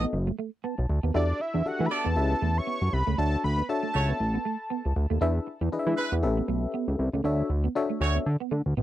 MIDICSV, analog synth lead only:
0, 0, Header, 1, 2, 480
1, 0, Start_track
1, 0, Key_signature, 2, "major"
1, 0, Tempo, 508475
1, 1081, Time_signature, 4, 2, 24, 8
1, 8333, End_track
2, 0, Start_track
2, 0, Title_t, "Analog synth lead"
2, 0, Program_c, 0, 81
2, 1093, Note_on_c, 0, 74, 104
2, 1329, Note_on_c, 0, 76, 93
2, 1343, Note_off_c, 0, 74, 0
2, 1578, Note_on_c, 0, 78, 106
2, 1593, Note_off_c, 0, 76, 0
2, 1752, Note_on_c, 0, 83, 88
2, 1767, Note_off_c, 0, 78, 0
2, 1813, Note_on_c, 0, 81, 124
2, 1827, Note_off_c, 0, 83, 0
2, 2431, Note_on_c, 0, 85, 123
2, 2445, Note_off_c, 0, 81, 0
2, 2767, Note_on_c, 0, 83, 120
2, 2781, Note_off_c, 0, 85, 0
2, 3000, Note_off_c, 0, 83, 0
2, 3006, Note_on_c, 0, 81, 120
2, 3227, Note_off_c, 0, 81, 0
2, 3249, Note_on_c, 0, 83, 104
2, 3469, Note_off_c, 0, 83, 0
2, 3486, Note_on_c, 0, 81, 99
2, 4646, Note_off_c, 0, 81, 0
2, 8333, End_track
0, 0, End_of_file